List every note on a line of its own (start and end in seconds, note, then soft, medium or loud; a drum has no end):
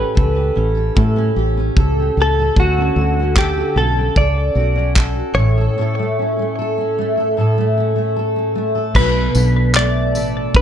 0.00 0.94 A2 medium
0.00 0.55 C#4 medium
0.00 0.34 G4 medium
0.00 0.15 A4 medium
0.00 1.32 B4 medium
0.15 0.50 C#2 medium
0.15 0.74 A4 medium
0.15 kick loud
0.35 1.35 G4 soft
0.55 0.90 A1 medium
0.55 1.16 C#4 medium
0.75 0.96 A4 medium
0.95 2.64 A2 medium
0.95 1.30 A2 loud
0.95 1.77 A4 medium
0.95 kick loud
1.16 1.57 C#4 medium
1.36 1.69 A1 medium
1.36 1.96 G4 medium
1.57 2.18 C#4 medium
1.76 2.09 C#2 medium
1.76 2.39 A4 medium
1.76 kick loud
2.00 2.66 G4 soft
2.17 2.50 C#2 medium
2.17 2.78 C#4 medium
2.22 2.60 A4 medium
2.39 2.58 A4 medium
2.56 2.89 D2 medium
2.56 4.17 D3 medium
2.56 3.38 F#4 medium
2.56 3.38 A4 medium
2.56 kick medium
2.78 3.19 C#4 medium
2.96 3.62 D2 loud
2.96 3.56 F#4 medium
3.19 3.77 C#4 medium
3.36 3.78 G4 medium
3.36 3.97 A4 medium
3.36 kick loud
3.36 clap loud
3.57 4.55 F#4 medium
3.76 4.09 B1 medium
3.76 4.75 C#4 medium
3.76 4.17 A4 medium
3.97 4.17 A4 medium
4.16 4.49 C#2 medium
4.16 4.94 A4 medium
4.16 4.93 D5 medium
4.16 kick loud
4.55 5.21 B1 medium
4.55 5.14 F#4 medium
4.76 5.99 C#4 medium
4.95 5.57 A4 medium
4.95 kick loud
4.95 clap loud
5.15 5.43 F#4 medium
5.34 5.68 A1 medium
5.34 5.76 A2 medium
5.34 8.11 C#5 loud
5.58 5.79 A4 medium
5.78 7.36 A2 medium
5.78 6.58 A4 medium
5.99 6.39 A3 medium
6.19 6.77 C#4 medium
6.39 6.98 A3 medium
6.59 7.17 A4 medium
6.78 7.76 C#4 medium
6.98 7.57 A3 medium
7.17 7.38 A4 medium
7.37 9.04 A2 medium
7.37 8.16 A4 medium
7.58 7.95 A3 medium
7.78 8.35 C#4 medium
7.96 8.55 A3 medium
8.16 8.75 A4 medium
8.36 9.04 C#4 medium
8.55 9.76 A3 medium
8.75 10.14 A4 medium
8.95 9.28 B1 loud
8.95 10.62 B2 medium
8.95 9.71 B4 medium
8.95 kick medium
8.95 crash loud
9.35 10.15 B1 loud
9.35 10.54 D4 medium
9.35 tambourine medium
9.75 10.62 A3 medium
9.75 10.56 D5 loud
9.75 clap loud
10.15 10.47 A1 medium
10.15 10.62 A4 medium
10.15 tambourine medium
10.55 10.62 B1 medium
10.55 10.62 D4 medium
10.55 10.62 B4 medium
10.55 kick loud